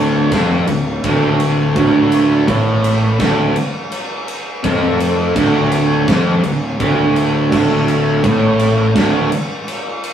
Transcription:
0.00 0.28 D1 loud
0.00 0.31 D2 loud
0.32 0.66 F1 loud
0.32 0.67 F2 loud
0.32 kick loud
0.32 snare loud
0.32 ride medium
0.66 1.00 D1 medium
0.66 0.97 D2 medium
0.66 ride medium
1.04 1.72 D1 loud
1.04 1.75 D2 loud
1.04 kick loud
1.04 ride medium
1.40 ride medium
1.76 2.44 D1 loud
1.76 2.47 D2 loud
1.76 kick loud
1.76 ride loud
2.12 ride medium
2.48 3.16 A1 loud
2.48 3.19 A2 loud
2.48 kick loud
2.48 ride loud
2.84 ride medium
3.20 3.53 D1 loud
3.20 3.55 D2 loud
3.20 kick loud
3.20 snare loud
3.20 ride loud
3.56 ride medium
3.92 ride loud
4.28 ride medium
4.63 5.32 F1 loud
4.63 5.35 F2 loud
4.63 kick loud
4.63 ride loud
5.00 ride medium
5.36 6.04 D1 loud
5.36 6.07 D2 loud
5.36 kick loud
5.36 ride loud
5.72 ride medium
6.07 6.41 F1 loud
6.07 6.42 F2 loud
6.07 kick loud
6.07 snare loud
6.07 ride loud
6.43 6.77 D1 medium
6.43 6.72 D2 medium
6.43 ride medium
6.79 7.48 D1 loud
6.79 7.50 D2 loud
6.79 kick loud
6.79 ride medium
7.16 ride medium
7.51 8.20 D1 loud
7.51 8.22 D2 loud
7.51 kick loud
7.51 crash loud
7.88 ride medium
8.23 8.91 A1 loud
8.23 8.94 A2 loud
8.23 kick loud
8.23 ride loud
8.60 ride medium
8.95 9.28 D1 loud
8.95 9.30 D2 loud
8.95 kick loud
8.95 snare loud
8.95 ride loud
9.32 ride medium
9.68 ride loud
10.04 ride medium

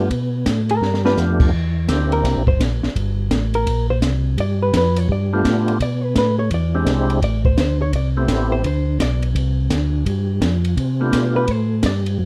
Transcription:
0.10 0.45 B2 medium
0.10 kick soft
0.10 ride medium
0.46 0.81 A2 medium
0.46 kick soft
0.46 snare medium
0.46 hi-hat pedal medium
0.46 ride medium
0.69 1.03 A#4 medium
0.69 ride medium
0.81 1.16 G2 medium
0.81 snare soft
0.94 snare medium
1.05 1.51 A3 medium
1.05 1.51 B3 medium
1.05 1.51 D4 medium
1.05 1.51 F4 medium
1.05 1.51 G4 medium
1.05 1.18 B4 medium
1.05 snare medium
1.17 1.52 F2 medium
1.17 snare medium
1.17 hi-hat pedal medium
1.40 kick medium
1.40 crash medium
1.53 1.88 E2 medium
1.53 kick soft
1.88 2.23 D2 medium
1.88 2.43 A#3 medium
1.88 2.43 C4 medium
1.88 2.43 D4 medium
1.88 2.43 E4 soft
1.88 2.43 G4 medium
1.88 kick soft
1.88 snare medium
1.88 hi-hat pedal medium
1.88 ride medium
2.12 2.46 A#4 medium
2.12 ride soft
2.24 2.36 C2 medium
2.24 kick soft
2.24 snare soft
2.24 ride medium
2.36 2.48 A#1 medium
2.47 2.59 G1 medium
2.47 2.60 C5 loud
2.47 kick medium
2.60 2.81 A#1 medium
2.60 kick soft
2.60 snare medium
2.60 hi-hat pedal medium
2.60 ride medium
2.82 2.89 A#1 soft
2.82 snare medium
2.96 3.30 G1 medium
2.96 kick soft
2.96 ride medium
3.31 3.66 A1 medium
3.31 kick soft
3.31 snare medium
3.31 hi-hat pedal medium
3.31 ride medium
3.54 3.88 A#4 medium
3.54 ride soft
3.66 4.01 A#1 medium
3.66 kick soft
3.66 ride medium
3.90 3.98 C5 loud
4.02 4.37 C2 medium
4.02 kick soft
4.02 snare medium
4.02 hi-hat pedal medium
4.02 ride medium
4.37 4.72 G2 medium
4.37 4.62 D5 medium
4.37 kick soft
4.37 ride medium
4.63 4.74 B4 medium
4.73 5.08 F2 loud
4.73 4.98 B4 medium
4.73 kick soft
4.73 snare medium
4.73 hi-hat pedal medium
4.73 ride medium
4.96 5.10 C#5 medium
4.96 ride medium
5.09 5.44 G2 medium
5.09 5.33 D5 medium
5.09 kick soft
5.33 5.78 A3 medium
5.33 5.78 B3 medium
5.33 5.79 D4 medium
5.33 5.79 F4 medium
5.33 5.79 G4 medium
5.45 5.79 A2 medium
5.45 kick soft
5.45 snare medium
5.45 hi-hat pedal medium
5.45 ride medium
5.68 ride soft
5.80 6.15 B2 medium
5.80 6.05 D5 medium
5.80 kick soft
5.80 ride medium
6.05 6.16 B4 medium
6.15 6.50 A2 medium
6.15 6.39 B4 medium
6.15 kick soft
6.15 snare medium
6.15 hi-hat pedal medium
6.15 ride medium
6.39 6.51 C#5 medium
6.51 6.86 E2 medium
6.51 6.75 D5 medium
6.51 kick soft
6.51 ride medium
6.74 7.20 G#3 medium
6.74 7.20 C4 medium
6.74 7.20 D4 medium
6.74 7.20 E4 medium
6.74 7.21 G4 medium
6.86 7.21 C2 medium
6.86 kick soft
6.86 snare medium
6.86 hi-hat pedal medium
6.86 ride medium
7.10 ride soft
7.22 7.57 A1 medium
7.22 7.45 D5 medium
7.22 kick soft
7.22 ride medium
7.45 7.58 C5 medium
7.45 kick medium
7.57 7.92 D2 medium
7.57 7.81 C5 loud
7.57 kick soft
7.57 snare medium
7.57 hi-hat pedal medium
7.57 ride medium
7.82 7.94 C#5 loud
7.93 8.28 C2 medium
7.93 8.09 D5 medium
7.93 kick soft
7.93 ride medium
8.17 8.62 A3 medium
8.17 8.62 B3 medium
8.17 8.62 C4 medium
8.17 8.62 E4 medium
8.17 8.62 G4 medium
8.28 8.63 A1 medium
8.28 kick soft
8.28 snare medium
8.28 hi-hat pedal medium
8.28 ride medium
8.52 8.64 C5 loud
8.64 8.99 D2 medium
8.64 8.99 C5 medium
8.64 kick soft
8.64 ride medium
8.99 9.34 B1 medium
8.99 9.23 D5 loud
8.99 kick soft
8.99 snare medium
8.99 hi-hat pedal medium
8.99 ride medium
9.22 ride soft
9.35 9.70 C2 medium
9.35 kick soft
9.35 ride medium
9.70 10.05 D2 medium
9.70 kick soft
9.70 snare medium
9.70 hi-hat pedal medium
9.70 ride medium
10.06 10.41 G2 medium
10.06 kick soft
10.06 ride medium
10.41 10.76 F2 medium
10.41 kick soft
10.41 snare medium
10.41 hi-hat pedal medium
10.41 ride medium
10.65 ride medium
10.77 11.12 C3 medium
10.77 kick soft
10.77 ride medium
11.00 11.46 A3 medium
11.00 11.46 B3 medium
11.00 11.46 D4 medium
11.00 11.46 F4 medium
11.00 11.46 G4 medium
11.12 11.47 B2 loud
11.12 kick soft
11.12 snare medium
11.12 hi-hat pedal medium
11.12 ride medium
11.36 11.51 B4 loud
11.48 11.83 A2 medium
11.48 11.85 C5 loud
11.48 kick soft
11.48 ride medium
11.83 12.18 G2 medium
11.83 11.99 D5 loud
11.83 kick soft
11.83 snare medium
11.83 hi-hat pedal medium
11.83 ride medium
12.06 ride medium
12.19 12.25 F#2 medium

